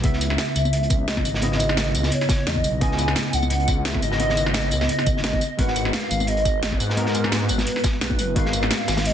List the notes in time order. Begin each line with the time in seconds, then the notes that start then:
0.02 C#2 C#3 B3 E4 E5, kick, closed hi-hat, high conga
0.13 snare
0.21 closed hi-hat, tambourine, high bongo
0.30 snare, high conga
0.38 snare, closed hi-hat
0.56 C#2, closed hi-hat, tambourine
0.65 tambourine, high conga
0.73 closed hi-hat
0.83 closed hi-hat
0.90 kick, closed hi-hat, tambourine, high conga
1.07 C#2 D#5, snare, closed hi-hat
1.17 kick, snare, high conga
1.25 G#1, closed hi-hat, open hi-hat, tambourine
1.34 snare
1.41 C#3 B3 E4 D#5, closed hi-hat, high conga
1.52 snare
1.59 closed hi-hat, tambourine, high bongo
1.69 snare, high conga
1.77 snare, closed hi-hat
1.95 C#2, closed hi-hat, tambourine
2.03 snare, tambourine, high conga
2.12 C#5, closed hi-hat
2.21 snare, closed hi-hat
2.28 kick, snare, closed hi-hat, tambourine, high conga
2.46 E2 D#5, snare, closed hi-hat
2.55 kick, high conga
2.64 B1, closed hi-hat, open hi-hat, tambourine
2.80 C#2 C#3 B3 E4 D#5 G#5, kick, closed hi-hat, high conga
2.92 snare
2.98 closed hi-hat, tambourine, high bongo
3.08 snare, high conga
3.16 snare, closed hi-hat
3.33 C#2 F#5, closed hi-hat, tambourine
3.42 tambourine, high conga
3.50 closed hi-hat
3.60 closed hi-hat
3.68 kick, closed hi-hat, tambourine, high conga
3.85 C#2 E5, snare, closed hi-hat
3.94 kick, snare, high conga
4.02 G#1 D#5, closed hi-hat, open hi-hat, tambourine
4.12 snare
4.18 C#3 B3 E4 D#5, closed hi-hat, high conga
4.29 snare
4.37 closed hi-hat, tambourine, high bongo
4.46 snare, high conga
4.54 snare, closed hi-hat
4.71 C#2, closed hi-hat, tambourine
4.81 snare, tambourine, high conga
4.89 closed hi-hat
4.99 snare, closed hi-hat
5.06 G#1, kick, closed hi-hat, tambourine, high conga
5.17 snare
5.23 D#5, snare, closed hi-hat
5.33 kick, high conga
5.41 closed hi-hat, open hi-hat, tambourine
5.57 G#1 G#3 F#4 A#4 B4 F#5, kick, closed hi-hat, high conga
5.68 snare
5.76 closed hi-hat, tambourine, high bongo
5.85 snare, high conga
5.93 F5, snare, closed hi-hat
6.11 G#1, closed hi-hat, tambourine
6.20 tambourine, high conga
6.27 D#5, closed hi-hat
6.37 closed hi-hat
6.45 kick, closed hi-hat, tambourine, high conga
6.63 G#1, snare, closed hi-hat
6.72 C#5, kick, snare, high conga
6.79 G#2 B4, closed hi-hat, open hi-hat, tambourine
6.90 snare
6.96 G#3 B3 F#4 A#4 A#5, closed hi-hat, high conga
7.06 snare
7.14 closed hi-hat, tambourine, high bongo
7.24 snare, high conga
7.31 B4, snare, closed hi-hat
7.49 G#1, closed hi-hat, tambourine
7.58 snare, tambourine, high conga
7.67 closed hi-hat
7.76 snare, closed hi-hat
7.84 kick, snare, closed hi-hat, tambourine, high conga
8.01 B1 B4, snare, closed hi-hat
8.10 kick, high conga
8.19 F#1, closed hi-hat, open hi-hat, tambourine
8.35 G#1 G#3 F#4 A#4 B4 F5, kick, closed hi-hat, high conga
8.45 snare
8.53 closed hi-hat, tambourine, high bongo
8.63 snare, high conga
8.70 snare, closed hi-hat
8.88 G#1, snare, closed hi-hat, tambourine
8.97 snare, closed hi-hat, tambourine, high conga
9.05 D#5, closed hi-hat